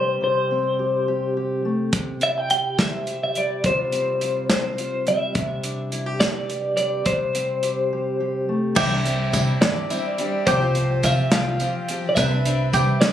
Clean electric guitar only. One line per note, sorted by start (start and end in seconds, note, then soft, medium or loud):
0.00 0.21 C5 medium
0.24 1.62 C5 medium
2.23 2.38 E5 medium
2.38 2.50 G5 medium
2.51 2.77 G5 medium
2.80 3.22 E5 medium
3.24 3.37 E5 medium
3.38 3.66 D5 medium
3.66 4.47 C5 medium
4.51 5.09 C5 medium
5.08 6.18 E5 medium
6.20 6.74 D5 medium
6.77 7.07 D5 medium
7.06 8.45 C5 medium
8.77 9.58 E5 medium
9.61 10.50 D5 medium
10.47 11.06 C5 medium
11.05 11.31 E5 medium
11.32 11.92 F5 medium
12.09 12.15 D5 medium
12.15 13.00 E5 medium
13.01 13.13 D5 medium